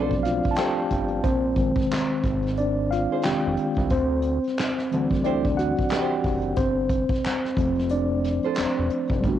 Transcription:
Already playing: analog synth bass B1, tine electric piano F3 A3 C4 D4 C5 D5, nylon-string guitar F4 A4 C5
0.11 kick
0.23 tine electric piano F4 F5, snare, closed hi-hat
0.43 kick, closed hi-hat
0.51 tine electric piano A5
0.55 nylon-string guitar F4, tine electric piano G4 G5, snare, clap, closed hi-hat
0.59 nylon-string guitar A4 C5
0.90 analog synth bass G1, kick, closed hi-hat
1.08 closed hi-hat
1.23 analog synth bass A#1, tine electric piano C4 C5, kick, closed hi-hat
1.56 tine electric piano D#3 G#3 C4, kick, closed hi-hat
1.76 kick, closed hi-hat
1.81 snare
1.91 snare, clap, closed hi-hat
2.24 analog synth bass G#1, kick, closed hi-hat
2.43 closed hi-hat
2.47 snare
2.57 tine electric piano D4 D5, closed hi-hat
2.91 tine electric piano F4 F5, snare, closed hi-hat
3.12 nylon-string guitar D#4 G#4 C5
3.22 tine electric piano D#3 G#3 C4 G4 G5, snare, clap, closed hi-hat
3.27 analog synth bass F1
3.47 analog synth bass F1
3.57 closed hi-hat
3.74 analog synth bass C2, kick, closed hi-hat
3.90 analog synth bass D2, tine electric piano C4 C5, kick, closed hi-hat
4.22 closed hi-hat
4.44 snare, closed hi-hat
4.57 snare, clap, closed hi-hat
4.78 snare
4.91 analog synth bass D2, tine electric piano E3 G3 C4, closed hi-hat
5.09 kick, closed hi-hat
5.14 snare
5.24 tine electric piano D4 D5, nylon-string guitar E4 G4 C5, closed hi-hat
5.45 kick
5.57 tine electric piano F#4 F#5, snare, closed hi-hat
5.77 kick, closed hi-hat
5.89 nylon-string guitar E4, tine electric piano G4 G5, snare, clap, closed hi-hat
5.93 nylon-string guitar G4 C5
6.24 analog synth bass F#1, kick, open hi-hat
6.42 closed hi-hat
6.56 analog synth bass G1, tine electric piano C4 C5, kick, closed hi-hat
6.89 kick, closed hi-hat
7.09 kick, closed hi-hat
7.14 snare
7.24 snare, clap, closed hi-hat
7.45 snare
7.57 analog synth bass F1, tine electric piano F3 A3 C4, kick, closed hi-hat
7.75 closed hi-hat
7.79 snare
7.89 tine electric piano D4 D5, closed hi-hat
8.24 snare, closed hi-hat
8.43 nylon-string guitar F4 A4 C5, closed hi-hat
8.55 tine electric piano C4 C5, snare, clap, closed hi-hat
8.59 analog synth bass E1
8.79 analog synth bass E1
8.90 closed hi-hat
9.07 analog synth bass F1, kick, closed hi-hat
9.20 tine electric piano G3 A3, kick, closed hi-hat
9.25 analog synth bass G1, tine electric piano B3 D4
9.29 tine electric piano F#4

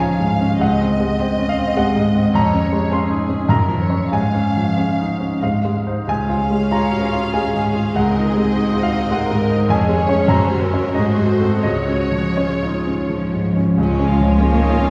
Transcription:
Already playing: grand piano C#2 C#4 D#4 A#5
0.00 grand piano F3 G#5, viola section C#4 G#4, violin section F5
0.20 grand piano G#2
0.41 grand piano C#4
0.59 grand piano C#2 F#5, violin section D#5
0.81 grand piano C4
1.00 grand piano G#3
1.19 grand piano C4, viola section C4 G#4, violin section D#5
1.39 grand piano C#4
1.49 grand piano F5
1.58 grand piano C4
1.76 grand piano G#3 F#5, viola section C4 G#4, violin section D#5
1.95 grand piano G#2
2.15 grand piano C4
2.34 grand piano F2 A#5, violin section C#5
2.53 grand piano C#4
2.72 grand piano G#3
2.92 grand piano C#4 C6, viola section C#4 G#4, violin section G#4 F5
3.10 grand piano D#4
3.29 grand piano C#4
3.49 grand piano F#2 A#5, viola section C#4 F#4, violin section A#4 F5
3.68 grand piano F3
3.82 violin section C#5
3.90 grand piano C#4 C#5
4.12 grand piano G#2 G#5, violin section F5
4.34 grand piano C#4
4.57 grand piano F3
4.77 grand piano C#4, viola section C#4 G#4, violin section F5
5.00 grand piano D#4
5.20 grand piano C#4
5.42 grand piano G#2 F5, viola section C4 G#4, violin section D#5
5.65 grand piano G#3
5.87 grand piano D#4 C5
6.07 grand piano C#2 G#5, viola section C#4 G#4, violin section F5
6.29 grand piano F4
6.50 grand piano G#3
6.71 grand piano F4 A#5, violin section C#5
6.92 grand piano F#4
7.04 violin section F4
7.13 grand piano F4
7.33 grand piano G#3 G#5, violin section G#4
7.54 grand piano G#2
7.75 grand piano F4
7.95 grand piano C#2 F#5, viola section C4, violin section A#4 D#5
8.16 grand piano D#4
8.26 violin section G#4
8.36 grand piano G#3
8.54 grand piano D#4, violin section F#4
8.74 grand piano F4
8.83 grand piano F5
8.93 grand piano D#4
9.11 grand piano G#3 F#5, violin section A#4
9.31 grand piano G#2
9.50 grand piano D#4
9.69 grand piano F2 G#5, viola section C#4 G#4, violin section G#4 C#5
9.89 grand piano G#3
9.98 violin section C#5
10.09 grand piano C#4 C#5
10.28 grand piano F#2 A#5, viola section F#4, violin section C5
10.50 grand piano F#3
10.62 violin section A#4
10.73 grand piano C#4 C#5
10.94 grand piano G#2 D#5, viola section A3, violin section G#4 C5
11.18 grand piano F#3
11.28 violin section C5
11.41 grand piano C4 A4
11.63 grand piano C#2 D#5, viola section G#3, violin section C#5
11.88 grand piano C#4
12.12 grand piano F3
12.37 grand piano C#4 C#5, viola section F4
12.62 grand piano D#4
12.87 grand piano C#4
13.09 cello section F3, grand piano F3
13.33 grand piano G#2
13.56 grand piano C#4
13.77 double bass section C#2, grand piano C#2, bassoon F3, cello section G#3, violin section C#4 C#5, french horn section C#4 F4, viola section F4 G#4, clarinet C#5, flute G#5
13.94 viola section C#5
14.00 grand piano C#4
14.09 violin section F4, viola section F5
14.21 grand piano F3
14.25 viola section C#5
14.40 cello section A#3, grand piano C#4, viola section G#4
14.56 viola section C#5
14.61 grand piano D#4
14.71 viola section F5
14.81 grand piano C#4
14.87 viola section C#5

